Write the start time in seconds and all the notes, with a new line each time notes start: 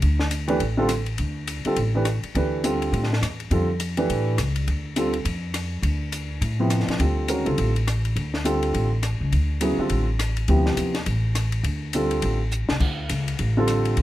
0.02 D2, ride
0.19 snare
0.31 hi-hat pedal, ride
0.48 E3 A3 D4 G4 B4, ride
0.60 A1, ride
0.77 D3 G3 C4 F4 A4
0.89 cross-stick, hi-hat pedal, ride
1.06 ride
1.18 D2, ride
1.47 hi-hat pedal, ride
1.65 D3 G3 C4 F4 A4, muted upright bass stroke, ride
1.76 A1, ride
1.95 E3 A3 D4 G4 B4
2.05 cross-stick, hi-hat pedal, ride
2.23 muted upright bass stroke, ride
2.35 D2 E3 A3 D4 G4 B4, ride
2.64 D3 G3 C4 F4 A4, hi-hat pedal, ride
2.82 ride
2.92 A2, ride
3.03 snare
3.13 snare
3.21 E2, cross-stick, hi-hat pedal, ride
3.40 ride
3.50 F2 D3 G3 C4 F4 A4, ride
3.80 hi-hat pedal, ride
3.97 E3 A3 D4 G4 B4, ride
4.09 A2, ride
4.38 C#2, cross-stick, hi-hat pedal, ride
4.56 ride
4.68 D2, ride
4.96 D3 G3 C4 F4 A4, hi-hat pedal, ride
5.14 ride
5.25 F2, ride
5.54 cross-stick, hi-hat pedal, ride
5.82 D2, ride
6.12 hi-hat pedal, ride
6.41 A2, ride
6.59 C3 F3 B3 E4 G4
6.70 cross-stick, hi-hat pedal, ride
6.80 snare
6.88 muted upright bass stroke, snare, ride
6.99 D2 D3 G3 C4 F4 A4, ride
7.28 D#3 G#3 C#4 F#4 A#4, hi-hat pedal, ride
7.45 C#2 D3 G3 C4 F4 A4, ride
7.58 A1, ride
7.76 ride
7.87 cross-stick, hi-hat pedal, ride
8.05 ride
8.16 D2, ride
8.34 snare
8.44 D3 G3 C4 F4 A4, hi-hat pedal, ride
8.63 ride
8.74 A1, ride
9.03 cross-stick, hi-hat pedal, ride
9.20 C#2
9.32 D2, ride
9.61 C#3 F#3 B3 E4 G#4, hi-hat pedal, ride
9.78 D3 G3 C4 F4 A4, muted upright bass stroke
9.89 A1, ride
10.19 cross-stick, hi-hat pedal, ride
10.37 ride
10.48 D2 C3 F3 B3 E4 G4, ride
10.66 snare
10.77 D#2, hi-hat pedal, ride
10.95 snare, ride
11.06 A1, ride
11.35 cross-stick, hi-hat pedal, ride
11.52 ride
11.63 D2, ride
11.93 D3 G3 C4 F4 A4, hi-hat pedal, ride
12.11 ride
12.22 A1, ride
12.51 hi-hat pedal
12.69 C2, snare
12.80 D2, kick, crash
13.09 C#2, hi-hat pedal, ride
13.28 ride
13.39 A1, ride
13.57 D3 G3 C4 F4 A4
13.68 cross-stick, hi-hat pedal, ride
13.85 ride
13.97 D2, ride